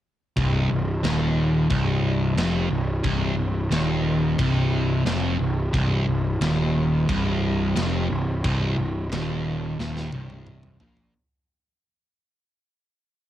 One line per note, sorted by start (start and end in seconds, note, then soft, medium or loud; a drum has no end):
0.37 0.68 C1 medium
0.37 0.69 C2 loud
0.37 kick loud
0.37 china medium
0.71 1.02 C1 medium
0.71 0.97 C2 medium
1.04 1.67 D#1 loud
1.04 1.69 D#2 loud
1.04 snare loud
1.04 china medium
1.70 2.34 C1 medium
1.70 2.36 C2 loud
1.70 kick loud
1.70 china medium
2.36 2.68 F1 loud
2.36 2.70 F2 loud
2.36 snare loud
2.36 china medium
2.70 3.02 C1 medium
2.70 2.98 C2 medium
3.04 3.36 C1 medium
3.04 3.36 C2 loud
3.04 kick loud
3.04 china medium
3.37 3.69 C1 medium
3.37 3.65 C2 medium
3.70 4.35 D#1 loud
3.70 4.38 D#2 loud
3.70 snare loud
3.70 china medium
4.38 5.02 C1 loud
4.38 5.05 C2 loud
4.38 kick loud
4.38 china medium
5.05 5.37 F1 loud
5.05 5.39 F2 loud
5.05 snare loud
5.05 china medium
5.39 5.71 C1 medium
5.39 5.67 C2 medium
5.73 6.05 C1 loud
5.73 6.06 C2 loud
5.73 kick loud
5.73 china medium
6.07 6.39 C1 medium
6.07 6.35 C2 medium
6.41 7.05 D#1 loud
6.41 7.08 D#2 loud
6.41 snare loud
6.41 china medium
7.09 7.73 C1 loud
7.09 7.76 C2 loud
7.09 kick loud
7.09 china medium
7.76 8.08 F1 loud
7.76 8.09 F2 loud
7.76 snare loud
7.76 china medium
8.10 8.42 C1 medium
8.10 8.37 C2 medium
8.44 8.76 C1 medium
8.44 8.77 C2 loud
8.44 kick loud
8.44 china medium
8.78 9.09 C1 medium
8.78 9.05 C2 medium
9.11 9.75 D#1 loud
9.11 9.78 D#2 loud
9.11 snare loud
9.11 china medium
9.79 10.11 D#1 medium
9.79 10.12 D#2 loud
9.79 snare medium
9.97 snare medium
10.12 10.76 C1 loud
10.12 10.79 C2 medium
10.12 high tom medium
10.30 high tom medium
10.47 mid tom medium
10.63 mid tom medium
10.80 11.11 A#1 medium
10.80 11.13 A#2 loud
10.80 floor tom loud
10.97 floor tom medium